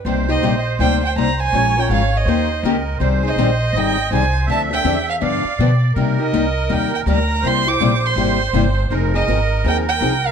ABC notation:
X:1
M:4/4
L:1/16
Q:"Swing" 1/4=163
K:Cm
V:1 name="Violin"
z2 e4 z2 g2 g2 b2 a2- | a2 g2 f2 e8 z2 | z2 e6 g4 a4 | =a2 g4 f2 d6 z2 |
z2 e6 g2 g2 b4 | c'2 d'4 c'8 z2 | z2 e6 g2 g4 f2 |]
V:2 name="Accordion"
c16 | _d8 c4 B4 | c8 e4 c4 | =e8 f4 d4 |
B16 | c16 | B16 |]
V:3 name="Steel-string acoustic guitar"
[C,G,B,EG]2 [B,EG]2 [C,G,B,EG] z3 [C,G,B,EG]2 z2 [C,G,B,EG] z3 | [F,A,_DFB]2 [DFB]2 [F,A,DFB] z3 [E,B,DGB]2 z2 [E,B,DGB] z3 | [E,G,CEA]2 [CEA]2 [E,G,CEA] z3 [E,G,CEA]2 z2 [E,G,CEA] z3 | [D,F,CD=A]2 [CDA]2 [D,F,CDA] z3 [D,F,=B,DG]2 z2 [D,F,B,DG] z3 |
[C,G,B,EG]2 [B,EG]2 [C,G,B,EG] z3 [C,G,B,EG]2 z2 [C,G,B,EG] z3 | [C,G,B,=EG]2 [B,EG]2 [C,G,B,EG] z3 [C,G,B,EG]2 z2 [C,G,B,EG] z3 | [F,CEA]2 [CEA]2 [F,CEA] z3 [F,CEA]2 z2 [F,CEA] z3 |]
V:4 name="Upright bass" clef=bass
C,,4 B,,,4 D,,4 C,,4 | B,,,4 A,,,4 E,,4 _D,,4 | C,,4 B,,,4 A,,,4 C,,4 | D,,4 =E,,4 G,,2 z2 =B,,4 |
C,4 C,,4 E,,4 D,,4 | C,,4 B,,,4 A,,,4 G,,,4 | F,,,4 A,,,4 E,,4 C,,4 |]